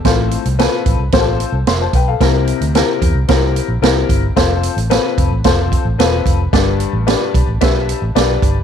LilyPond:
<<
  \new Staff \with { instrumentName = "Upright piano" } { \time 4/4 \key f \lydian \tempo 4 = 111 << { r2. <e'' c'''>16 <c'' a''>16 <b' g''>16 <a' f''>16~ | <a' f''>16 r2. r8. | r1 | r1 | } \\ { <c' f' a' c''>8 r8 <c' f' a' b'>8 r8 <c' f' g' a' c''>8 r4. | <c' e' g' bes'>8 r8 <c' e' g' bes'>8 r8 <c' e' g' bes'>8 r8 <c' e' g' bes'>8 r8 | <c' f' a' c''>8 r8 <c' f' a' b'>8 r8 <c' f' a' c''>8 r8 <c' f' a' b'>8 r8 | <d' g' b' d''>8 r8 <d' g' b' d''>8 r8 <d' g' b' e''>8 r8 <d' g' b' d''>8 r8 | } >> }
  \new Staff \with { instrumentName = "Upright piano" } { \clef bass \time 4/4 \key f \lydian a,4. r2 r8 | c4. r2 r8 | r1 | g,4. r2 r8 | }
  \new Staff \with { instrumentName = "Fingered electric bass" } { \clef bass \time 4/4 \key f \lydian a,,8. c,8 r16 a,,16 c,16 a,,8. c,16 f,,8 b,,8 | c,8. d,8 r16 e,16 c,16 c,8. bes,,16 c,8 g,,8 | f,,8. a,,8 r16 f,,16 a,,16 f,,8. a,,16 e,,8 f,,8 | g,,8. a,,8 r16 b,,16 a,,16 b,,8. a,,16 b,,8 g,,8 | }
  \new DrumStaff \with { instrumentName = "Drums" } \drummode { \time 4/4 <hh bd sn>8 hh16 hh16 <hh sn>8 <hh bd>8 <hh bd sn>8 hh8 <hh sn>8 <hh bd>8 | <hh bd sn>8 hh16 hh16 <hh sn>8 <hh bd>8 <hh bd sn>8 hh8 <hh sn>8 <hh bd>8 | <hh bd sn>8 hh16 hh16 <hh sn>8 <hh bd>8 <hh bd sn>8 <hh bd>8 <hh sn>8 <hh bd>8 | <hh bd sn>8 hh8 <hh sn>8 <hh bd>8 <hh bd sn>8 hh8 <hh sn>8 <hh bd>8 | }
>>